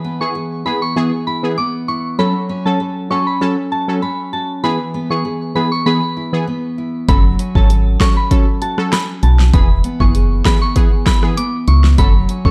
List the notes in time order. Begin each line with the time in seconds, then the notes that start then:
Already playing: E3
0.04 B3
0.20 E3 B3 G#4 C#6
0.35 G#4
0.65 E3 B3 G#4 B5
0.82 C#6
0.96 E3 B3 G#4
1.27 E4 B5
1.43 E3 B3 G#4
1.58 B3 D6
1.88 E4 C#6
2.19 F#3 C#4 A4 B5
2.49 C#4
2.65 F#3 C#4 A4 A5
2.80 A4
3.10 F#3 C#4 A4 C#6
3.27 B5
3.41 F#3 C#4 A4
3.72 F#4 A5
3.88 F#3 C#4 A4
4.02 C#4 B5
4.33 F#4 A5
4.63 E3 B3 G#4 B5
4.94 B3
5.10 E3 B3 G#4 C#6
5.25 G#4
5.55 E3 B3 G#4 B5
5.72 C#6
5.86 E3 B3 G#4 B5
6.17 E4
6.33 E3 B3 G#4
6.47 B3
6.78 E4
7.08 F#1 F#3 C#4 A4 B5, kick, closed hi-hat
7.39 C#4, closed hi-hat
7.55 G#1 F#3 C#4 A4 A5, kick
7.70 A4, closed hi-hat
8.00 F#3 C#4 A4 C#6, kick, cross-stick, snare, closed hi-hat
8.17 B5
8.31 F#3 C#4 A4, kick, closed hi-hat
8.62 F#4 A5, closed hi-hat
8.78 F#3 C#4 A4, cross-stick
8.92 C#4 B5, cross-stick, snare, closed hi-hat
9.23 B1 F#4 A5, closed hi-hat
9.39 snare
9.53 E1 E3 B3 G#4 B5, kick, closed hi-hat
9.84 B3, closed hi-hat
10.00 F#1 E3 B3 G#4 C#6, kick
10.15 G#4, closed hi-hat
10.45 E3 B3 G#4 B5, kick, cross-stick, snare, closed hi-hat
10.62 C#6
10.76 E3 B3 G#4, kick, closed hi-hat
11.06 E4 B5, kick, cross-stick, snare, closed hi-hat
11.23 E3 B3 G#4, cross-stick
11.37 B3 D6, closed hi-hat
11.68 C#2 E4 C#6, closed hi-hat
11.84 snare
11.98 F#1 F#3 C#4 A4 B5, kick, closed hi-hat
12.29 C#4, closed hi-hat
12.45 G#1 F#3 C#4 A4 C#6, kick